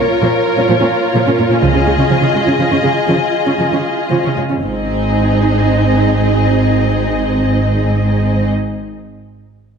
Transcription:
Already playing: viola section F4, violin section A#4 C#5
0.00 viola section A#3
0.22 cello section A#2, viola section F3
0.57 cello section A#2, viola section C#4
0.68 cello section A#2, viola section F3
0.80 cello section A#2, viola section C#4
1.15 cello section A#2, viola section F3
1.27 cello section A#2, viola section C#4
1.39 cello section A#2, viola section A#3
1.50 cello section A#2, viola section C#4
1.61 double bass section C#2, cello section C#3, viola section F3, violin section G#4 D#5
1.73 cello section C#3, viola section C#4
1.86 cello section C#3, viola section G#3
1.98 cello section C#3, viola section C#4
2.10 cello section C#3, viola section F3
2.21 cello section C#3, viola section C#4
2.34 cello section C#3, viola section G#3
2.46 cello section C#3, viola section C#4
2.58 cello section C#3, viola section F3
2.71 cello section C#3, viola section C#4
2.83 cello section C#3, viola section G#3
3.08 cello section C#3, viola section F3
3.46 cello section C#3, viola section C#4
3.59 cello section C#3, viola section F3
3.72 cello section C#3, viola section C#4
4.11 cello section C#3, viola section F3
4.25 cello section C#3, viola section C#4
4.37 cello section C#3, viola section G#3
4.50 cello section C#3, viola section C#4
4.63 double bass section G#1, cello section G#2, viola section C4 D#4, violin section G#4 D#5

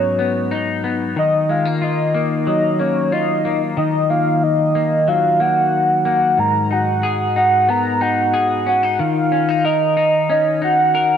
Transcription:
Already playing: clean electric guitar G#2 F#3 B3 D#4, soft synth lead C#5
0.19 clean electric guitar B3
0.51 clean electric guitar D#4
0.84 clean electric guitar B3
1.16 clean electric guitar D#3, soft synth lead D#5
1.49 clean electric guitar G#3, soft synth lead F5
1.65 clean electric guitar A#3
1.82 clean electric guitar F4, soft synth lead D#5
2.14 clean electric guitar A#3
2.47 clean electric guitar F#3, soft synth lead D#5
2.79 clean electric guitar A#3, soft synth lead C#5
3.12 clean electric guitar F4, soft synth lead D#5
3.45 clean electric guitar A#3
3.77 clean electric guitar D#3, soft synth lead D#5
4.10 clean electric guitar A#3, soft synth lead F5
4.43 soft synth lead D#5
4.75 clean electric guitar A#3
5.08 clean electric guitar F#3, soft synth lead F5
5.40 clean electric guitar A#3, soft synth lead F#5
6.05 clean electric guitar A#3, soft synth lead F#5
6.38 clean electric guitar G#2, soft synth lead A#5
6.71 clean electric guitar D#4, soft synth lead F#5
7.03 clean electric guitar G#4
7.36 clean electric guitar D#4, soft synth lead F#5
7.69 clean electric guitar B3, soft synth lead A#5
8.01 clean electric guitar D#4, soft synth lead F#5
8.34 clean electric guitar G#4
8.66 clean electric guitar C#4, soft synth lead F#5
8.83 clean electric guitar D#4
8.99 clean electric guitar D#3, soft synth lead F5
9.32 clean electric guitar C#4
9.49 clean electric guitar D#4
9.65 clean electric guitar A#4, soft synth lead D#5
9.97 clean electric guitar D#4
10.30 clean electric guitar C#4, soft synth lead D#5
10.62 clean electric guitar D#4, soft synth lead F#5
10.95 clean electric guitar A#4

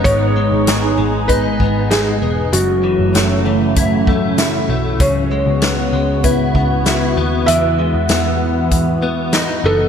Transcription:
Already playing: clean electric guitar G#3 B3 D#4, analog synth pad G#3 B3 D#4
0.04 picked electric bass G#1, clean electric guitar G#2, analog synth pad G#4, felt piano C#5, kick, closed hi-hat
0.37 clean electric guitar G#3
0.52 picked electric bass G#1
0.67 clean electric guitar B3, snare, closed hi-hat
0.98 picked electric bass G#1, clean electric guitar G#3
1.28 clean electric guitar D#4, felt piano B4, kick, closed hi-hat
1.60 picked electric bass G#1, clean electric guitar B3, kick
1.90 clean electric guitar D#4, felt piano G#4, snare, closed hi-hat
2.22 picked electric bass E1, clean electric guitar B3
2.51 picked electric bass F#1, clean electric guitar F#2, analog synth pad C#3 F#3 A3 F#4, felt piano F#4, closed hi-hat
2.84 clean electric guitar E3
2.99 picked electric bass F#1
3.14 picked electric bass F#1, clean electric guitar A3, snare, closed hi-hat
3.46 clean electric guitar E3
3.76 clean electric guitar E4, kick, closed hi-hat
4.07 clean electric guitar A3, kick
4.38 clean electric guitar E4, snare, closed hi-hat
4.69 picked electric bass B1, clean electric guitar A3
5.00 picked electric bass C#2, analog synth pad C#3 B3, clean electric guitar C#3, felt piano C#5, kick, closed hi-hat
5.31 clean electric guitar G#3
5.46 picked electric bass C#2
5.62 clean electric guitar B3, snare, closed hi-hat
5.93 picked electric bass C#2, clean electric guitar G#3
6.24 clean electric guitar E4, felt piano B4, kick, closed hi-hat
6.55 picked electric bass C#2, clean electric guitar B3, kick
6.86 clean electric guitar E4, snare, closed hi-hat
7.17 picked electric bass D#2, clean electric guitar B3
7.46 picked electric bass E2, clean electric guitar E3, analog synth pad E3, felt piano E5, closed hi-hat
7.79 clean electric guitar G#3
7.94 picked electric bass E2
8.09 picked electric bass E2, clean electric guitar B3, snare, closed hi-hat
8.71 kick, closed hi-hat
9.02 clean electric guitar B3
9.33 clean electric guitar D#4, snare, closed hi-hat
9.64 picked electric bass F#1, clean electric guitar B3, felt piano A4

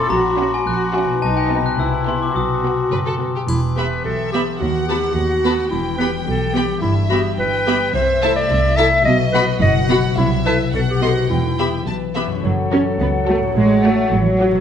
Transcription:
Already playing: harp A#2 C#4
0.01 harp E4
0.06 double bass section A#1, harp F#4
0.10 cello section F#4, glockenspiel A#5
0.38 viola section C#4, violin section F#4 E5
0.54 glockenspiel G#5
0.66 double bass section A#1, cello section F#4, glockenspiel F#6
0.94 viola section C#4, violin section F#4 E5, glockenspiel G#5
1.05 harp B2
1.09 harp B3
1.14 harp D#4
1.18 double bass section B1, harp F#4, glockenspiel A5
1.22 cello section D#4
1.37 glockenspiel G5
1.51 viola section B3, violin section D#4 B4
1.61 harp C3
1.66 harp B3, glockenspiel F#6
1.70 harp E4
1.75 double bass section C2, cello section E4, harp B4
1.80 glockenspiel E6
2.07 viola section B3, violin section E4 G4, glockenspiel C6
2.18 harp B2
2.23 harp B3, glockenspiel D6
2.27 harp F#4
2.31 double bass section B1, cello section F#4, harp B4
2.36 glockenspiel D#6
2.64 viola section B3, violin section F#4 B4
2.91 double bass section F#1, violin section B4
3.06 violin section A4
3.21 viola section B3, violin section B4
3.35 violin section G4
3.48 double bass section E1, cello section E2, harp E3, clarinet E4, triangle
3.75 harp B3, viola section B3 G4, clarinet B4, violin section E5 B5
4.04 double bass section B1, cello section B2, harp G4, clarinet A4, violin section E5
4.32 harp B3, viola section B3 G4, clarinet G4, violin section E5 B5
4.59 cello section D#2, double bass section D#2, harp D#3, clarinet F#4, violin section F#5
4.87 harp A3, viola section B3 F#4, clarinet G4, violin section A5 B5
5.14 cello section D#2, double bass section D#2, clarinet F#4, harp F#4
5.44 harp A3, viola section B3 F#4, violin section A5 B5
5.70 double bass section E1, cello section E2, harp E3, clarinet E4, violin section G5
5.98 harp G3, viola section B3 G4, clarinet B4, violin section G5 B5
6.27 double bass section B1, cello section B2, harp G4, clarinet A4
6.54 harp G3, viola section B3 G4, clarinet G4, violin section G5 B5
6.82 double bass section G1, cello section G2, harp G2, clarinet E4, violin section E5
7.09 harp G3, viola section B3 G4, clarinet F#4, violin section E5 B5
7.38 double bass section G1, cello section G2, harp E4, clarinet B4, violin section G5
7.67 harp G3, viola section B3 G4, violin section E5 B5
7.93 double bass section C2, cello section C3, harp C3, clarinet C5, violin section E5
8.22 harp A3, viola section E4 A4, violin section E5 A5
8.36 clarinet D5
8.50 double bass section C2, cello section C3, harp E4
8.76 harp A3, viola section E4 A4, clarinet E5, violin section E5 A5
9.05 double bass section B1, harp B2, cello section B2, violin section D#5, clarinet D#5
9.33 harp F#3, viola section B3 F#4, clarinet B4, violin section F#5 B5
9.61 double bass section F#1, cello section F#2, harp F#4, clarinet D#5, violin section F#5
9.89 harp F#3, viola section B3 F#4, violin section F#5 B5
10.17 double bass section C2, harp C3, cello section C3, clarinet E4, violin section E5
10.45 harp E4 A4, viola section E4 A4, clarinet B4, violin section E5 A5
10.73 double bass section B1, harp B2, cello section B2, clarinet A4, violin section F#5
10.90 clarinet G4
11.01 viola section B3 A4, harp D#4 C5, clarinet F#4, violin section D#5 C6
11.30 double bass section E1, cello section E2, harp E3, clarinet E4, violin section G5
11.58 viola section B3 G4, harp E4, violin section E5 B5
11.87 double bass section B1, cello section B2, harp B4, violin section A5
12.15 viola section B3 G4, harp E4, violin section E5 B5
12.26 harp F#2
12.31 harp F#3
12.35 harp C#4
12.40 double bass section F#1, bassoon F#3, harp A4, flute section F#5
12.44 cello section F#3, clarinet A4
12.71 cello section C#4, french horn section F#4 A4, viola section F#4, violin section A4 C#5
12.99 double bass section C#2, cello section B3
13.28 cello section A3, viola section F#4, french horn section F#4 A4, violin section A4 C#5
13.38 harp A2
13.43 harp F#3
13.47 harp C#4
13.52 double bass section A1, harp F#4, clarinet C#5
13.56 cello section G#3
13.83 cello section A3, french horn section F#4 C#5, viola section F#4, violin section C#5 F#5
14.12 double bass section A1, cello section F#3
14.20 cello section E3
14.26 cello section F#3
14.40 viola section F#4, french horn section F#4 C#5, violin section C#5 F#5
14.51 harp B2
14.56 harp F#3

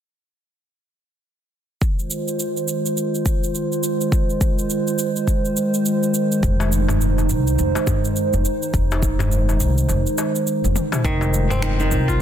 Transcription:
1.82 ambient pad D#3 G#3 F4 C5, kick, shaker
1.99 shaker
2.11 shaker
2.28 shaker
2.39 shaker
2.57 shaker
2.68 shaker
2.86 shaker
2.97 shaker
3.15 shaker
3.26 kick, shaker
3.44 shaker
3.55 shaker
3.72 shaker
3.84 shaker
4.01 shaker
4.12 kick, shaker
4.30 shaker
4.41 kick, shaker
4.59 shaker
4.70 shaker
4.87 shaker
4.99 shaker
5.16 shaker
5.27 kick, shaker
5.45 shaker
5.57 shaker
5.74 shaker
5.86 shaker
6.03 shaker
6.14 shaker
6.32 shaker
6.43 upright bass F1, ambient pad D#4, kick, shaker
6.60 darbuka tek, shaker
6.72 shaker
6.88 darbuka tek, darbuka dum, shaker
7.01 shaker
7.18 darbuka ka, shaker
7.29 upright bass C2, shaker
7.47 shaker
7.59 upright bass F1, shaker
7.75 darbuka tek, shaker
7.87 kick, darbuka ka, darbuka dum, shaker
8.05 shaker
8.16 shaker
8.33 upright bass F1, shaker
8.45 shaker
8.62 shaker
8.74 upright bass F1, kick, shaker
8.91 darbuka tek, shaker
9.03 kick, shaker
9.19 darbuka tek, darbuka dum, shaker
9.32 shaker
9.49 darbuka ka, shaker
9.60 upright bass C2, shaker
9.78 shaker
9.89 upright bass F1, darbuka tek, shaker
10.07 shaker
10.18 darbuka ka, darbuka tek, shaker
10.35 shaker
10.47 shaker
10.64 upright bass F1, shaker
10.76 high tom, shaker
10.92 mid tom, darbuka ka, darbuka tek, shaker
11.04 upright bass F1, ambient pad D#3 G#3 F4 C5, kora D#3, kick, shaker
11.21 darbuka ka, darbuka tek, shaker
11.34 shaker
11.50 kora C4, darbuka ka, darbuka tek, darbuka dum, shaker
11.62 kora D#3, finger snap, shaker
11.79 kora D#3, shaker
11.91 upright bass C2, darbuka ka, shaker
12.08 kora F4, kick, shaker

